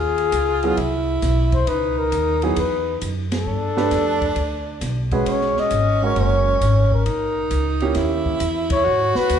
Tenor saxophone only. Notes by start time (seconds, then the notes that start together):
Already playing: F4
0.77 E4
1.67 D#4
3.47 D4
5.25 C#4
7.06 D#4
7.96 E4
8.84 F#4